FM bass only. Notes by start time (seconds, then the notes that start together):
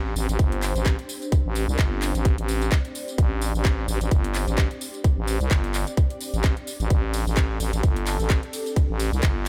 Already playing: A1
0.16 A1
0.29 A1
0.39 G1
0.75 A1
1.45 A1
1.68 C2
1.79 G1
2.15 A1
2.38 A1
3.18 A1
3.55 A1
3.88 A1
4.01 A1
4.11 G1
4.48 A1
5.17 A1
5.41 C2
5.51 G1
6.34 A1
6.80 A1
6.90 A1
7.27 A1
7.60 A1
7.73 A1
7.83 G1
8.20 A1
8.89 A1
9.13 C2
9.23 G1